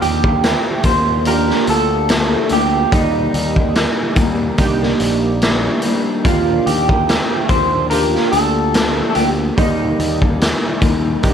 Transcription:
Already playing: D#3 F3 A#3 D4 F4 G4
0.01 D#2 G4, closed hi-hat
0.23 A#3 D4 G4, kick
0.44 snare, closed hi-hat
0.83 D#2 F3 A#3 D4 G4 C5, kick, closed hi-hat
1.25 A#3 D4 F4 G4 A#4, closed hi-hat
1.48 A#3 D4 G4, snare
1.67 D2 A4, closed hi-hat
2.09 F3 A#3 D4 G4, snare, closed hi-hat
2.49 D2 F3 A#3 D4 G4, closed hi-hat
2.91 D#2 D#3 G3 A#3 D#4 G4 D5, kick, closed hi-hat
3.34 D#2, closed hi-hat
3.56 G3 A#3, kick
3.75 snare, closed hi-hat
4.16 D#2 D#3 G3 A#3, kick, closed hi-hat
4.58 C2 A#3 D4 D#4 G4, kick, closed hi-hat
4.82 G3 A#3 D4, snare
5.00 A#1, closed hi-hat
5.42 D#3 G3 A#3 D4, snare, closed hi-hat
5.82 D#3 G3 A#3 D4, closed hi-hat
6.24 D#2 D#3 F3 A#3 D4 F4 G4, kick, closed hi-hat
6.66 D#2 G4, closed hi-hat
6.89 A#3 D4 G4, kick
7.09 snare, closed hi-hat
7.49 D#2 F3 A#3 D4 G4 C5, kick, closed hi-hat
7.90 A#3 D4 F4 G4 A#4, closed hi-hat
8.14 A#3 D4 G4, snare
8.32 D2 A4, closed hi-hat
8.74 F3 A#3 D4 G4, snare, closed hi-hat
9.10 A4
9.15 D2 F3 A#3 D4 G4, closed hi-hat
9.56 D#2 D#3 G3 A#3 D#4 G4 D5, kick, closed hi-hat
10.00 D#2, closed hi-hat
10.22 G3 A#3, kick
10.41 snare, closed hi-hat
10.81 D#2 D#3 G3 A#3, kick, closed hi-hat
11.23 C2 A#3 D4 D#4 G4, kick, closed hi-hat

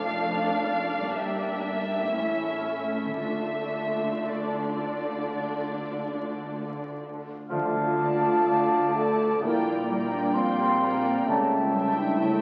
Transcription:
Already playing: F1 F2 F3 A3 D4 A4 D5 F5
0.97 G2
1.02 A#3
1.06 D4
1.11 G4
1.15 G1 G2 A#3 G4 E5
1.98 A2
2.03 A3
2.08 C#4
2.12 A1 A2 E4
2.16 A3 C#4 A4
3.03 D3
3.08 A3
3.13 D4
3.17 F4 E5
3.21 D2 D3 D4 F4
4.31 D5
7.49 D2 D3 F3 A3 F4 D5 F5 A5
7.75 A3
8.00 A3 D4 D5 A5
8.24 A4
8.47 D2 D3 D4 D5 F5
8.71 D5
8.95 A3 A4 D5 E5 A5
9.20 D5
9.41 A#1 A#2 G3 A#3 E4 D5 G5 A#5
9.66 A#3
9.89 G3 A#3 D5 G5
10.12 D4
10.35 A#1 A#2 C4 A#4 F5 C6
10.59 G4
10.82 A#3 D5 G5 A#5
11.04 A#5
11.25 C#2 C#3 G3 A3 C#4 E5 A5
11.49 C#4
11.72 G3 A3 E5 G5
11.94 D4 E4
12.17 C#2 E4 A4 C#5 E5 A5

